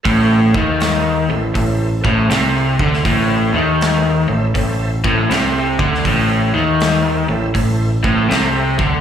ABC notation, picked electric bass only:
X:1
M:4/4
L:1/8
Q:"Swing" 1/4=80
K:Am
V:1 name="Picked electric bass" clef=bass
A,,, ^D,,2 A,,, A,,, A,,, C,, =D,, | A,,, ^D,,2 A,,, A,,, A,,, C,, =D,, | A,,, ^D,,2 A,,, A,,, A,,, C,, =D,, |]